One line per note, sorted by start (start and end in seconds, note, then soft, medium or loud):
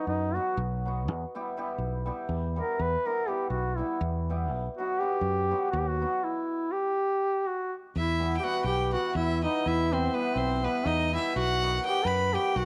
0.00 0.34 F#3 medium
0.07 0.38 F#2 medium
0.07 0.36 D#4 medium
0.35 0.84 F#3 medium
0.35 0.49 B3 medium
0.35 0.49 D#4 medium
0.35 0.58 F#4 medium
0.35 0.49 F#4 medium
0.57 1.08 B1 loud
0.85 1.15 F#3 medium
0.85 1.00 B3 medium
0.85 1.00 D#4 medium
0.85 1.00 F#4 medium
1.08 1.24 E2 medium
1.35 1.56 G3 medium
1.35 1.48 B3 medium
1.35 1.48 E4 medium
1.35 1.48 G4 medium
1.57 2.04 G3 medium
1.57 1.70 B3 medium
1.57 1.70 E4 medium
1.57 1.71 G4 loud
1.78 2.09 B1 medium
2.06 2.55 G3 medium
2.06 2.20 B3 medium
2.06 2.20 E4 medium
2.06 2.20 G4 medium
2.29 2.60 E2 medium
2.56 3.04 G3 medium
2.56 2.71 B3 medium
2.56 2.71 E4 medium
2.56 2.71 G4 medium
2.56 2.82 A#4 medium
2.79 2.95 E2 medium
2.79 3.08 B4 medium
3.05 3.26 G3 medium
3.05 3.19 B3 medium
3.05 3.19 E4 medium
3.05 3.19 G4 medium
3.05 3.30 A#4 loud
3.27 3.76 G3 medium
3.27 3.41 B3 medium
3.27 3.42 E4 medium
3.27 3.49 G4 medium
3.27 3.42 G4 medium
3.50 3.81 B1 medium
3.50 3.78 F#4 medium
3.77 4.28 G3 medium
3.77 3.92 B3 medium
3.77 4.01 E4 medium
3.77 3.92 E4 medium
3.77 3.92 G4 medium
4.01 4.52 E2 loud
4.29 4.58 G3 medium
4.29 4.43 B3 medium
4.29 4.43 E4 medium
4.29 4.43 G4 medium
4.52 4.67 B1 medium
4.77 4.99 F#3 medium
4.77 4.91 B3 medium
4.77 4.92 D#4 medium
4.77 5.00 F#4 loud
4.77 4.92 F#4 medium
4.99 5.49 F#3 medium
4.99 5.13 B3 medium
4.99 5.14 D#4 medium
4.99 5.14 F#4 medium
4.99 5.71 G4 loud
5.21 5.52 F#2 medium
5.51 5.99 F#3 medium
5.51 5.64 B3 medium
5.51 5.64 D#4 medium
5.51 5.64 F#4 medium
5.71 6.04 D#2 loud
5.71 5.81 F#4 loud
5.79 5.90 G4 medium
5.88 6.25 F#4 medium
6.00 6.29 F#3 medium
6.00 6.14 B3 medium
6.00 6.14 D#4 medium
6.00 6.15 F#4 medium
6.24 6.73 E4 medium
6.72 7.48 G4 loud
7.47 7.73 F#4 medium
7.96 8.37 E2 medium
7.96 8.35 E4 medium
7.96 8.35 E5 medium
8.20 8.42 E3 medium
8.20 8.42 G3 medium
8.20 8.33 B3 medium
8.20 8.33 E4 medium
8.20 8.34 G4 medium
8.37 8.45 G4 medium
8.37 8.45 G5 soft
8.43 8.91 E3 medium
8.43 8.91 G3 medium
8.43 8.56 B3 medium
8.43 8.56 E4 medium
8.43 8.65 F#4 medium
8.43 8.56 G4 medium
8.43 8.64 F#5 medium
8.64 8.95 B1 medium
8.64 8.91 G4 medium
8.64 8.91 G5 medium
8.92 9.42 E3 medium
8.92 9.42 G3 medium
8.92 9.06 B3 medium
8.92 9.06 E4 medium
8.92 9.14 F#4 loud
8.92 9.06 G4 medium
8.92 9.14 F#5 medium
9.15 9.45 E2 loud
9.15 9.42 E4 medium
9.15 9.41 E5 medium
9.43 9.90 E3 medium
9.43 9.91 G3 medium
9.43 9.56 B3 medium
9.43 9.69 D#4 medium
9.43 9.57 E4 medium
9.43 9.57 G4 medium
9.43 9.69 D#5 medium
9.66 10.08 E2 medium
9.66 9.94 E4 loud
9.66 9.94 E5 medium
9.91 10.13 E3 medium
9.91 10.13 G3 medium
9.91 10.05 B3 medium
9.91 10.15 C4 medium
9.91 10.05 E4 medium
9.91 10.05 G4 medium
9.91 10.16 C5 medium
10.14 10.62 E3 medium
10.14 10.62 G3 medium
10.14 10.36 B3 medium
10.14 10.27 B3 medium
10.14 10.27 E4 medium
10.14 10.27 G4 medium
10.14 10.39 B4 medium
10.35 10.66 B1 medium
10.35 10.65 C4 medium
10.35 10.66 C5 medium
10.63 11.12 E3 medium
10.63 11.12 G3 medium
10.63 10.88 B3 medium
10.63 10.77 B3 medium
10.63 10.77 E4 medium
10.63 10.77 G4 medium
10.63 10.88 B4 medium
10.85 11.16 E2 loud
10.85 11.13 D#4 loud
10.85 11.14 D#5 medium
11.13 11.42 E3 medium
11.13 11.42 G3 medium
11.13 11.27 B3 medium
11.13 11.35 E4 medium
11.13 11.27 E4 medium
11.13 11.27 G4 medium
11.13 11.36 E5 loud
11.36 11.78 B1 medium
11.36 11.81 F#4 loud
11.36 11.82 F#5 loud
11.62 11.83 D#3 medium
11.62 11.83 F#3 medium
11.62 11.75 B3 medium
11.62 11.76 D#4 medium
11.62 11.76 F#4 medium
11.84 12.32 D#3 medium
11.84 12.33 F#3 medium
11.84 11.97 B3 medium
11.84 11.97 D#4 medium
11.84 11.98 F#4 medium
11.84 12.07 G4 loud
11.84 12.08 G5 loud
12.05 12.36 F#2 loud
12.05 12.35 B4 loud
12.05 12.37 B5 medium
12.33 12.65 D#3 medium
12.33 12.65 F#3 medium
12.33 12.47 B3 medium
12.33 12.47 D#4 medium
12.33 12.48 F#4 medium
12.33 12.58 G4 loud
12.33 12.59 G5 medium
12.56 12.65 B1 loud
12.56 12.65 F#4 loud
12.56 12.65 F#5 medium